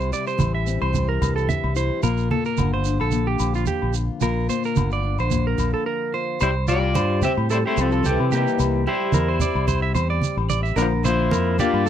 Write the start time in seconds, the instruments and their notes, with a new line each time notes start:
Already playing: fingered electric bass C2, steel-string acoustic guitar C3 G3 E4, clean electric guitar C5
0.00 shekere
0.12 steel-string acoustic guitar G3, clean electric guitar D5, muted conga, shekere
0.27 clean electric guitar C5, shekere
0.38 fingered electric bass A1, steel-string acoustic guitar E3, high conga, low agogo, shekere
0.55 clean electric guitar E5
0.67 steel-string acoustic guitar C4, shekere
0.82 fingered electric bass C2, clean electric guitar C5, low agogo
0.93 steel-string acoustic guitar G3, muted conga, low conga, shekere
1.09 clean electric guitar A#4
1.22 fingered electric bass C2, steel-string acoustic guitar G2, high conga, low agogo, shekere
1.36 clean electric guitar A4, shekere
1.49 clean electric guitar E5, high conga, low conga, shekere
1.64 fingered electric bass C2, low agogo
1.76 steel-string acoustic guitar E4, clean electric guitar C5, shekere
2.03 fingered electric bass A#1, steel-string acoustic guitar A#2 F4, clean electric guitar A#4, muted conga, low agogo, shekere
2.17 shekere
2.31 steel-string acoustic guitar A#3, clean electric guitar A4, muted conga, high conga
2.45 clean electric guitar A#4, shekere
2.57 fingered electric bass G1, steel-string acoustic guitar D3, high conga, low agogo, shekere
2.74 clean electric guitar C5
2.85 steel-string acoustic guitar D4, muted conga, shekere
3.00 fingered electric bass A#1, clean electric guitar A4, low agogo
3.11 steel-string acoustic guitar A#3, muted conga, shekere
3.27 clean electric guitar G4
3.39 fingered electric bass A#1, steel-string acoustic guitar F2, low agogo, shekere
3.54 clean electric guitar F4, shekere
3.66 clean electric guitar G4, high conga, shekere
3.82 fingered electric bass A#1, low agogo
3.94 steel-string acoustic guitar F4, shekere
4.20 fingered electric bass A#1, steel-string acoustic guitar A#2 F4, clean electric guitar A#4, muted conga, low agogo, shekere
4.49 steel-string acoustic guitar A#3, clean electric guitar C5, muted conga, shekere
4.64 clean electric guitar A#4, shekere
4.76 fingered electric bass G1, steel-string acoustic guitar D3, high conga, low agogo, shekere
4.91 clean electric guitar D5, shekere
5.03 steel-string acoustic guitar D4, muted conga
5.19 fingered electric bass A#1, clean electric guitar C5, low agogo, shekere
5.30 steel-string acoustic guitar A#3, muted conga, low conga, shekere
5.47 clean electric guitar A#4
5.58 fingered electric bass A#1, steel-string acoustic guitar F2, high conga, low agogo, shekere
5.74 clean electric guitar A4
5.86 clean electric guitar A#4
6.14 steel-string acoustic guitar F4, clean electric guitar C5
6.40 fingered electric bass C2, alto saxophone G3, clean electric guitar E4 C5, muted steel-string acoustic guitar stroke, muted conga, low agogo, shekere
6.68 steel-string acoustic guitar G3, alto saxophone G3, clean electric guitar F4 D5, shekere
6.94 fingered electric bass G2, steel-string acoustic guitar E3, clean electric guitar C5, high conga, low agogo, shekere
7.22 steel-string acoustic guitar C4, alto saxophone C4, clean electric guitar G4 E5, high conga, shekere
7.37 fingered electric bass A2, low agogo
7.49 steel-string acoustic guitar G2, clean electric guitar E4 A4 C5, muted conga, shekere
7.54 alto saxophone G3
7.66 alto saxophone A3, clean electric guitar E4 G4 C5
7.76 fingered electric bass C2, steel-string acoustic guitar G3, muted conga, low agogo, shekere
7.80 alto saxophone F3, clean electric guitar C4 A4
7.92 clean electric guitar A4, shekere
8.03 steel-string acoustic guitar E3, clean electric guitar C4 G4, high conga, shekere
8.09 alto saxophone E3
8.20 fingered electric bass C3, low agogo
8.30 clean electric guitar A#3 G4, muted conga, shekere
8.35 alto saxophone E3, clean electric guitar G4
8.47 shekere
8.58 fingered electric bass C2, steel-string acoustic guitar C3, muted conga, low agogo, shekere
8.87 steel-string acoustic guitar G3, alto saxophone G3, clean electric guitar E4 G4 C5
9.12 fingered electric bass E2, steel-string acoustic guitar E3, clean electric guitar A#4, high conga, low agogo, shekere
9.28 clean electric guitar C5
9.40 steel-string acoustic guitar C4, clean electric guitar D5, high conga, low conga, shekere
9.55 fingered electric bass C2, low agogo
9.68 steel-string acoustic guitar G2, clean electric guitar C5, muted conga, high conga, shekere
9.82 clean electric guitar E5
9.94 fingered electric bass E2, steel-string acoustic guitar G3, clean electric guitar C5, muted conga, low agogo, shekere
10.10 clean electric guitar D5
10.22 high conga, shekere
10.37 fingered electric bass A1, low agogo
10.49 clean electric guitar D5, muted conga, shekere
10.63 clean electric guitar E5, shekere
10.76 fingered electric bass A#1, steel-string acoustic guitar A#2 D3 A#3 D4, clean electric guitar D4 A#4, muted conga, low agogo, shekere
10.81 alto saxophone F3
11.03 alto saxophone F3, steel-string acoustic guitar A#3, clean electric guitar E4 C5, shekere
11.30 fingered electric bass F2, steel-string acoustic guitar D3, clean electric guitar A#4, high conga, low agogo, shekere
11.59 alto saxophone A#3, steel-string acoustic guitar D4, clean electric guitar F4 G4 D5, high conga, shekere
11.73 fingered electric bass G2, low agogo
11.86 clean electric guitar A4, muted conga